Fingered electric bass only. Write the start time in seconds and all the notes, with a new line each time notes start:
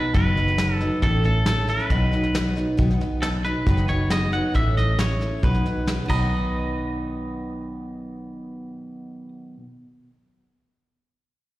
0.15 F#1
1.02 A1
1.90 B1
2.79 B1
3.67 F#1
4.55 A1
5.43 B1
6.09 B1